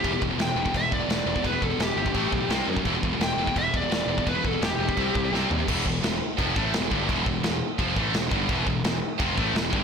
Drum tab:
CC |x---x---x---x---|x---x---x---x---|x---x---x---x---|x---x---x-------|
SD |----o-------o---|----o-------o---|----o-------o---|----o-------o---|
FT |----------------|----------------|----------------|--------------o-|
BD |o-o----oo-o----o|o-o----oo-o----o|o-o----oo-o----o|o-o----oo-o-----|

CC |x---x---x---x---|x---x---x---x---|x---x---x---x---|
SD |----o-------o---|----o-------o---|----o-------o---|
FT |----------------|----------------|----------------|
BD |o-o-----o-o---o-|o-o-----o-o---o-|o-o-----o-o---o-|